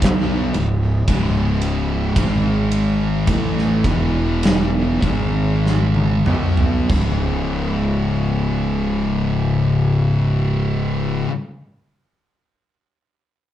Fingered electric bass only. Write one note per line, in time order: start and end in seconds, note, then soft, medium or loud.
0.02 0.51 B1 medium
0.55 1.04 C#1 medium
1.08 2.12 C#1 loud
2.16 3.24 G#1 medium
3.27 3.81 A1 medium
3.85 4.99 E1 medium
5.02 6.22 G#1 medium
6.26 6.86 B1 medium
6.89 11.22 C#1 medium